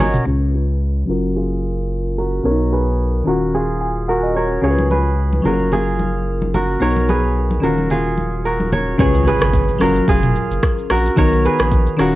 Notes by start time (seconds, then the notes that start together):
Already playing: D#3 C#4 F4 F#4 A#4 C#5 D#5 F#5
0.00 G#1 A#4 C#5 G#5, high conga, low conga
0.14 mid tom, shaker
0.25 C#2 C#3 C#4 F4 G#4 B4
0.54 G#4 B4
1.06 F#1 F#3 C#4 F4 A#4
1.10 F#4 A#4
1.36 F4 G#4
2.18 F#4 A#4
2.43 B1 B2 B3 C#4 A#4 C#5
2.52 D#4
2.73 G#4 B4
3.24 D#1 D#3 C#4 F4 F#4 A#4
3.29 F#4
3.54 F4 G#4
3.81 G#5
4.08 F#4 A#4 F#5
4.23 D#5
4.35 A#4 C#5
4.61 C#2 C#3 C#4 F4 G#4 A#4 C#5
4.70 B4
4.78 high conga
4.91 G#4 B4, high conga
5.33 high conga
5.42 F#1 F#3 C#4 F4 A#4, low conga
5.46 F#4 G#4
5.53 A#4
5.60 high conga
5.72 F4 G#4, low conga
5.99 high conga
6.42 high conga
6.54 F#4 A#4, high conga, low conga
6.80 B1 B2 B3 D#4 A#4 C#5
6.96 high conga
7.09 G#4 B4, high conga
7.51 high conga
7.60 D#1 D#3 C#4 F4 F#4 A#4, low conga
7.65 F#4
7.78 high conga
7.90 F4 G#4, low conga
8.18 high conga
8.45 F#4 A#4
8.60 high conga
8.72 A#4 C#5, high conga, low conga
8.98 C#2 C#3 C#4 F4 G#4 B4 C#5, kick, impact, shaker
9.14 shaker
9.27 G#4 B4, shaker
9.41 G#1, cross-stick, shaker
9.53 kick, shaker
9.68 shaker
9.78 F#1 F#3 C#4 F4 A#4, cross-stick, open hi-hat, shaker
9.82 F#4 A#4
9.96 shaker
10.08 F1 F4 G#4, kick, shaker
10.23 mid tom, shaker
10.35 shaker
10.51 F#1, shaker
10.63 kick, cross-stick, shaker
10.78 shaker
10.90 A#1 F#4 A#4, cross-stick, open hi-hat, shaker
11.06 shaker
11.16 B1 D#3 B3 D#4 A#4 C#5, kick, shaker
11.32 shaker
11.45 G#4 B4, shaker
11.59 A#1, cross-stick, shaker
11.72 kick, shaker
11.87 shaker
11.97 D#1 D#3 C#4 F4 F#4 A#4, cross-stick, open hi-hat, shaker
12.02 F#4